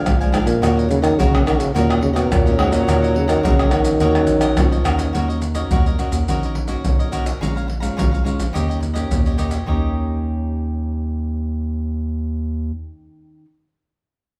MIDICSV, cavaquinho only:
0, 0, Header, 1, 3, 480
1, 0, Start_track
1, 0, Key_signature, -6, "minor"
1, 0, Tempo, 566572
1, 535, Time_signature, 4, 2, 24, 8
1, 12198, End_track
2, 0, Start_track
2, 0, Title_t, "Cavaquinho"
2, 0, Program_c, 0, 24
2, 0, Note_on_c, 0, 70, 55
2, 0, Note_on_c, 0, 77, 59
2, 0, Note_on_c, 0, 80, 66
2, 148, Note_off_c, 0, 80, 0
2, 152, Note_off_c, 0, 77, 0
2, 156, Note_off_c, 0, 70, 0
2, 174, Note_on_c, 0, 80, 48
2, 179, Note_on_c, 0, 77, 51
2, 185, Note_on_c, 0, 70, 45
2, 264, Note_off_c, 0, 70, 0
2, 273, Note_on_c, 0, 62, 59
2, 274, Note_off_c, 0, 77, 0
2, 275, Note_on_c, 0, 70, 72
2, 277, Note_off_c, 0, 80, 0
2, 285, Note_on_c, 0, 77, 78
2, 287, Note_on_c, 0, 80, 67
2, 375, Note_off_c, 0, 80, 0
2, 379, Note_off_c, 0, 77, 0
2, 386, Note_off_c, 0, 70, 0
2, 386, Note_on_c, 0, 80, 47
2, 390, Note_on_c, 0, 77, 44
2, 395, Note_off_c, 0, 62, 0
2, 396, Note_on_c, 0, 70, 40
2, 511, Note_off_c, 0, 80, 0
2, 513, Note_off_c, 0, 77, 0
2, 516, Note_off_c, 0, 70, 0
2, 524, Note_on_c, 0, 66, 62
2, 525, Note_on_c, 0, 70, 65
2, 531, Note_on_c, 0, 73, 67
2, 533, Note_on_c, 0, 75, 82
2, 640, Note_off_c, 0, 66, 0
2, 640, Note_off_c, 0, 70, 0
2, 641, Note_off_c, 0, 75, 0
2, 643, Note_off_c, 0, 73, 0
2, 651, Note_on_c, 0, 75, 51
2, 654, Note_on_c, 0, 73, 42
2, 660, Note_on_c, 0, 70, 38
2, 742, Note_off_c, 0, 70, 0
2, 744, Note_off_c, 0, 73, 0
2, 744, Note_off_c, 0, 75, 0
2, 865, Note_on_c, 0, 75, 67
2, 874, Note_on_c, 0, 73, 55
2, 879, Note_on_c, 0, 70, 51
2, 990, Note_off_c, 0, 75, 0
2, 994, Note_off_c, 0, 73, 0
2, 997, Note_off_c, 0, 70, 0
2, 1006, Note_on_c, 0, 66, 71
2, 1013, Note_on_c, 0, 70, 65
2, 1016, Note_on_c, 0, 73, 73
2, 1018, Note_on_c, 0, 75, 76
2, 1115, Note_off_c, 0, 75, 0
2, 1120, Note_off_c, 0, 66, 0
2, 1122, Note_off_c, 0, 73, 0
2, 1124, Note_off_c, 0, 70, 0
2, 1125, Note_on_c, 0, 75, 51
2, 1133, Note_on_c, 0, 73, 42
2, 1142, Note_on_c, 0, 70, 37
2, 1232, Note_off_c, 0, 70, 0
2, 1232, Note_off_c, 0, 73, 0
2, 1234, Note_on_c, 0, 66, 52
2, 1235, Note_off_c, 0, 75, 0
2, 1242, Note_on_c, 0, 70, 53
2, 1242, Note_on_c, 0, 73, 57
2, 1245, Note_on_c, 0, 75, 54
2, 1468, Note_off_c, 0, 66, 0
2, 1473, Note_off_c, 0, 70, 0
2, 1478, Note_off_c, 0, 73, 0
2, 1478, Note_on_c, 0, 66, 71
2, 1479, Note_off_c, 0, 75, 0
2, 1483, Note_on_c, 0, 70, 77
2, 1487, Note_on_c, 0, 73, 67
2, 1491, Note_on_c, 0, 75, 83
2, 1593, Note_off_c, 0, 75, 0
2, 1595, Note_off_c, 0, 66, 0
2, 1598, Note_off_c, 0, 70, 0
2, 1600, Note_off_c, 0, 73, 0
2, 1603, Note_on_c, 0, 75, 53
2, 1613, Note_on_c, 0, 73, 43
2, 1615, Note_on_c, 0, 70, 37
2, 1695, Note_off_c, 0, 73, 0
2, 1696, Note_off_c, 0, 70, 0
2, 1696, Note_off_c, 0, 75, 0
2, 1807, Note_on_c, 0, 75, 66
2, 1815, Note_on_c, 0, 73, 63
2, 1825, Note_on_c, 0, 70, 58
2, 2059, Note_off_c, 0, 75, 0
2, 2063, Note_off_c, 0, 73, 0
2, 2068, Note_off_c, 0, 70, 0
2, 2081, Note_on_c, 0, 75, 44
2, 2085, Note_on_c, 0, 73, 41
2, 2092, Note_on_c, 0, 70, 42
2, 2186, Note_off_c, 0, 70, 0
2, 2188, Note_off_c, 0, 73, 0
2, 2188, Note_on_c, 0, 66, 60
2, 2190, Note_off_c, 0, 75, 0
2, 2196, Note_on_c, 0, 70, 75
2, 2198, Note_on_c, 0, 73, 68
2, 2200, Note_on_c, 0, 75, 68
2, 2286, Note_off_c, 0, 75, 0
2, 2292, Note_off_c, 0, 73, 0
2, 2296, Note_off_c, 0, 70, 0
2, 2296, Note_on_c, 0, 75, 48
2, 2303, Note_on_c, 0, 73, 43
2, 2306, Note_on_c, 0, 70, 38
2, 2310, Note_off_c, 0, 66, 0
2, 2423, Note_off_c, 0, 75, 0
2, 2427, Note_off_c, 0, 73, 0
2, 2428, Note_off_c, 0, 70, 0
2, 2431, Note_on_c, 0, 66, 60
2, 2438, Note_on_c, 0, 70, 73
2, 2444, Note_on_c, 0, 73, 71
2, 2445, Note_on_c, 0, 75, 69
2, 2550, Note_off_c, 0, 75, 0
2, 2551, Note_off_c, 0, 66, 0
2, 2554, Note_off_c, 0, 70, 0
2, 2557, Note_off_c, 0, 73, 0
2, 2560, Note_on_c, 0, 75, 50
2, 2569, Note_on_c, 0, 70, 37
2, 2570, Note_on_c, 0, 73, 42
2, 2655, Note_off_c, 0, 73, 0
2, 2657, Note_off_c, 0, 70, 0
2, 2661, Note_off_c, 0, 75, 0
2, 2776, Note_on_c, 0, 75, 77
2, 2786, Note_on_c, 0, 73, 54
2, 2787, Note_on_c, 0, 70, 56
2, 2899, Note_off_c, 0, 70, 0
2, 2903, Note_off_c, 0, 75, 0
2, 2908, Note_off_c, 0, 73, 0
2, 2908, Note_on_c, 0, 66, 65
2, 2909, Note_on_c, 0, 70, 68
2, 2916, Note_on_c, 0, 73, 77
2, 2921, Note_on_c, 0, 75, 77
2, 3029, Note_off_c, 0, 66, 0
2, 3029, Note_off_c, 0, 70, 0
2, 3031, Note_off_c, 0, 75, 0
2, 3033, Note_off_c, 0, 73, 0
2, 3041, Note_on_c, 0, 75, 47
2, 3048, Note_on_c, 0, 73, 47
2, 3056, Note_on_c, 0, 70, 36
2, 3140, Note_off_c, 0, 70, 0
2, 3144, Note_off_c, 0, 73, 0
2, 3147, Note_off_c, 0, 75, 0
2, 3149, Note_on_c, 0, 66, 47
2, 3150, Note_on_c, 0, 70, 49
2, 3154, Note_on_c, 0, 73, 54
2, 3157, Note_on_c, 0, 75, 57
2, 3381, Note_off_c, 0, 66, 0
2, 3387, Note_off_c, 0, 70, 0
2, 3390, Note_off_c, 0, 75, 0
2, 3391, Note_off_c, 0, 73, 0
2, 3391, Note_on_c, 0, 66, 70
2, 3397, Note_on_c, 0, 70, 79
2, 3400, Note_on_c, 0, 73, 78
2, 3401, Note_on_c, 0, 75, 79
2, 3504, Note_off_c, 0, 75, 0
2, 3509, Note_off_c, 0, 66, 0
2, 3511, Note_off_c, 0, 73, 0
2, 3513, Note_off_c, 0, 70, 0
2, 3514, Note_on_c, 0, 75, 47
2, 3522, Note_on_c, 0, 73, 44
2, 3526, Note_on_c, 0, 70, 36
2, 3623, Note_off_c, 0, 70, 0
2, 3627, Note_off_c, 0, 73, 0
2, 3628, Note_off_c, 0, 75, 0
2, 3734, Note_on_c, 0, 75, 69
2, 3739, Note_on_c, 0, 73, 57
2, 3748, Note_on_c, 0, 70, 52
2, 3981, Note_off_c, 0, 75, 0
2, 3983, Note_off_c, 0, 73, 0
2, 3987, Note_off_c, 0, 70, 0
2, 3995, Note_on_c, 0, 75, 51
2, 4002, Note_on_c, 0, 73, 42
2, 4004, Note_on_c, 0, 70, 37
2, 4098, Note_off_c, 0, 70, 0
2, 4100, Note_off_c, 0, 73, 0
2, 4101, Note_on_c, 0, 66, 63
2, 4103, Note_off_c, 0, 75, 0
2, 4108, Note_on_c, 0, 70, 72
2, 4110, Note_on_c, 0, 73, 67
2, 4113, Note_on_c, 0, 75, 68
2, 4208, Note_off_c, 0, 75, 0
2, 4216, Note_off_c, 0, 73, 0
2, 4218, Note_on_c, 0, 75, 49
2, 4220, Note_off_c, 0, 70, 0
2, 4224, Note_off_c, 0, 66, 0
2, 4226, Note_on_c, 0, 73, 42
2, 4230, Note_on_c, 0, 70, 42
2, 4342, Note_off_c, 0, 75, 0
2, 4345, Note_on_c, 0, 66, 61
2, 4346, Note_off_c, 0, 73, 0
2, 4349, Note_off_c, 0, 70, 0
2, 4357, Note_on_c, 0, 70, 59
2, 4357, Note_on_c, 0, 73, 68
2, 4362, Note_on_c, 0, 75, 67
2, 4465, Note_off_c, 0, 75, 0
2, 4466, Note_off_c, 0, 66, 0
2, 4472, Note_off_c, 0, 70, 0
2, 4472, Note_off_c, 0, 73, 0
2, 4475, Note_on_c, 0, 75, 43
2, 4481, Note_on_c, 0, 73, 39
2, 4488, Note_on_c, 0, 70, 37
2, 4577, Note_off_c, 0, 70, 0
2, 4577, Note_off_c, 0, 73, 0
2, 4583, Note_off_c, 0, 75, 0
2, 4698, Note_on_c, 0, 75, 68
2, 4703, Note_on_c, 0, 73, 55
2, 4709, Note_on_c, 0, 70, 48
2, 4822, Note_off_c, 0, 75, 0
2, 4825, Note_off_c, 0, 73, 0
2, 4828, Note_off_c, 0, 70, 0
2, 4840, Note_on_c, 0, 66, 67
2, 4843, Note_on_c, 0, 70, 70
2, 4845, Note_on_c, 0, 73, 72
2, 4852, Note_on_c, 0, 75, 69
2, 4953, Note_off_c, 0, 66, 0
2, 4955, Note_off_c, 0, 70, 0
2, 4956, Note_off_c, 0, 73, 0
2, 4957, Note_off_c, 0, 75, 0
2, 4967, Note_on_c, 0, 75, 43
2, 4971, Note_on_c, 0, 73, 43
2, 4978, Note_on_c, 0, 70, 35
2, 5069, Note_off_c, 0, 70, 0
2, 5070, Note_off_c, 0, 73, 0
2, 5072, Note_on_c, 0, 66, 45
2, 5074, Note_off_c, 0, 75, 0
2, 5079, Note_on_c, 0, 70, 48
2, 5080, Note_on_c, 0, 73, 50
2, 5084, Note_on_c, 0, 75, 56
2, 5309, Note_off_c, 0, 66, 0
2, 5313, Note_off_c, 0, 70, 0
2, 5313, Note_off_c, 0, 73, 0
2, 5315, Note_off_c, 0, 75, 0
2, 5322, Note_on_c, 0, 66, 58
2, 5329, Note_on_c, 0, 70, 68
2, 5335, Note_on_c, 0, 73, 64
2, 5335, Note_on_c, 0, 75, 70
2, 5434, Note_off_c, 0, 66, 0
2, 5438, Note_off_c, 0, 70, 0
2, 5440, Note_off_c, 0, 75, 0
2, 5441, Note_off_c, 0, 73, 0
2, 5458, Note_on_c, 0, 75, 44
2, 5465, Note_on_c, 0, 73, 41
2, 5470, Note_on_c, 0, 70, 40
2, 5553, Note_off_c, 0, 70, 0
2, 5557, Note_off_c, 0, 73, 0
2, 5560, Note_off_c, 0, 75, 0
2, 5657, Note_on_c, 0, 75, 62
2, 5664, Note_on_c, 0, 73, 50
2, 5673, Note_on_c, 0, 70, 54
2, 5901, Note_off_c, 0, 75, 0
2, 5905, Note_off_c, 0, 73, 0
2, 5910, Note_off_c, 0, 70, 0
2, 5923, Note_on_c, 0, 75, 48
2, 5928, Note_on_c, 0, 73, 44
2, 5935, Note_on_c, 0, 70, 38
2, 6027, Note_off_c, 0, 70, 0
2, 6030, Note_on_c, 0, 66, 60
2, 6035, Note_off_c, 0, 75, 0
2, 6037, Note_off_c, 0, 73, 0
2, 6037, Note_on_c, 0, 70, 74
2, 6046, Note_on_c, 0, 73, 66
2, 6049, Note_on_c, 0, 75, 61
2, 6132, Note_off_c, 0, 75, 0
2, 6141, Note_off_c, 0, 73, 0
2, 6142, Note_on_c, 0, 75, 43
2, 6145, Note_off_c, 0, 70, 0
2, 6148, Note_off_c, 0, 66, 0
2, 6151, Note_on_c, 0, 73, 39
2, 6155, Note_on_c, 0, 70, 35
2, 6264, Note_off_c, 0, 75, 0
2, 6269, Note_off_c, 0, 73, 0
2, 6271, Note_off_c, 0, 70, 0
2, 6276, Note_on_c, 0, 68, 69
2, 6282, Note_on_c, 0, 73, 60
2, 6285, Note_on_c, 0, 77, 67
2, 6290, Note_on_c, 0, 82, 67
2, 6390, Note_off_c, 0, 82, 0
2, 6391, Note_off_c, 0, 68, 0
2, 6394, Note_off_c, 0, 73, 0
2, 6396, Note_off_c, 0, 77, 0
2, 6401, Note_on_c, 0, 82, 45
2, 6410, Note_on_c, 0, 77, 39
2, 6417, Note_on_c, 0, 73, 37
2, 6494, Note_off_c, 0, 73, 0
2, 6497, Note_off_c, 0, 77, 0
2, 6497, Note_off_c, 0, 82, 0
2, 6611, Note_on_c, 0, 82, 57
2, 6625, Note_on_c, 0, 77, 53
2, 6627, Note_on_c, 0, 73, 43
2, 6739, Note_off_c, 0, 82, 0
2, 6746, Note_off_c, 0, 77, 0
2, 6747, Note_off_c, 0, 73, 0
2, 6750, Note_on_c, 0, 68, 66
2, 6757, Note_on_c, 0, 73, 70
2, 6758, Note_on_c, 0, 77, 73
2, 6760, Note_on_c, 0, 82, 68
2, 6863, Note_off_c, 0, 82, 0
2, 6869, Note_off_c, 0, 68, 0
2, 6870, Note_off_c, 0, 77, 0
2, 6872, Note_off_c, 0, 73, 0
2, 6873, Note_on_c, 0, 82, 46
2, 6880, Note_on_c, 0, 77, 37
2, 6889, Note_on_c, 0, 73, 35
2, 6975, Note_off_c, 0, 73, 0
2, 6978, Note_on_c, 0, 68, 43
2, 6981, Note_off_c, 0, 77, 0
2, 6981, Note_off_c, 0, 82, 0
2, 6985, Note_on_c, 0, 73, 51
2, 6991, Note_on_c, 0, 77, 55
2, 6991, Note_on_c, 0, 82, 48
2, 7222, Note_off_c, 0, 68, 0
2, 7225, Note_on_c, 0, 63, 62
2, 7227, Note_off_c, 0, 73, 0
2, 7230, Note_off_c, 0, 77, 0
2, 7230, Note_off_c, 0, 82, 0
2, 7233, Note_on_c, 0, 67, 69
2, 7238, Note_on_c, 0, 75, 62
2, 7240, Note_on_c, 0, 73, 64
2, 7345, Note_off_c, 0, 75, 0
2, 7347, Note_off_c, 0, 63, 0
2, 7351, Note_off_c, 0, 67, 0
2, 7354, Note_off_c, 0, 73, 0
2, 7355, Note_on_c, 0, 75, 46
2, 7365, Note_on_c, 0, 73, 39
2, 7367, Note_on_c, 0, 67, 39
2, 7449, Note_off_c, 0, 67, 0
2, 7453, Note_off_c, 0, 73, 0
2, 7453, Note_off_c, 0, 75, 0
2, 7570, Note_on_c, 0, 75, 56
2, 7576, Note_on_c, 0, 73, 46
2, 7586, Note_on_c, 0, 67, 42
2, 7820, Note_off_c, 0, 75, 0
2, 7823, Note_off_c, 0, 73, 0
2, 7828, Note_off_c, 0, 67, 0
2, 7845, Note_on_c, 0, 75, 41
2, 7849, Note_on_c, 0, 73, 44
2, 7856, Note_on_c, 0, 67, 34
2, 7935, Note_off_c, 0, 67, 0
2, 7939, Note_off_c, 0, 73, 0
2, 7942, Note_on_c, 0, 63, 55
2, 7943, Note_off_c, 0, 75, 0
2, 7946, Note_on_c, 0, 67, 60
2, 7950, Note_on_c, 0, 73, 54
2, 7953, Note_on_c, 0, 75, 70
2, 8036, Note_off_c, 0, 75, 0
2, 8044, Note_off_c, 0, 73, 0
2, 8046, Note_on_c, 0, 75, 41
2, 8051, Note_off_c, 0, 67, 0
2, 8054, Note_on_c, 0, 73, 35
2, 8062, Note_on_c, 0, 67, 34
2, 8066, Note_off_c, 0, 63, 0
2, 8178, Note_off_c, 0, 75, 0
2, 8182, Note_off_c, 0, 73, 0
2, 8186, Note_off_c, 0, 67, 0
2, 8187, Note_on_c, 0, 63, 55
2, 8195, Note_on_c, 0, 67, 54
2, 8196, Note_on_c, 0, 73, 64
2, 8203, Note_on_c, 0, 75, 64
2, 11395, Note_off_c, 0, 63, 0
2, 11399, Note_off_c, 0, 67, 0
2, 11399, Note_off_c, 0, 73, 0
2, 11403, Note_off_c, 0, 75, 0
2, 12198, End_track
3, 0, Start_track
3, 0, Title_t, "Muted cavaquinho strokes"
3, 749, Note_on_c, 9, 29, 41
3, 834, Note_off_c, 9, 29, 0
3, 1703, Note_on_c, 9, 29, 37
3, 1788, Note_off_c, 9, 29, 0
3, 2664, Note_on_c, 9, 29, 36
3, 2749, Note_off_c, 9, 29, 0
3, 3633, Note_on_c, 9, 29, 43
3, 3717, Note_off_c, 9, 29, 0
3, 4586, Note_on_c, 9, 29, 34
3, 4671, Note_off_c, 9, 29, 0
3, 5560, Note_on_c, 9, 29, 36
3, 5645, Note_off_c, 9, 29, 0
3, 6502, Note_on_c, 9, 29, 33
3, 6587, Note_off_c, 9, 29, 0
3, 7457, Note_on_c, 9, 29, 37
3, 7541, Note_off_c, 9, 29, 0
3, 12198, End_track
0, 0, End_of_file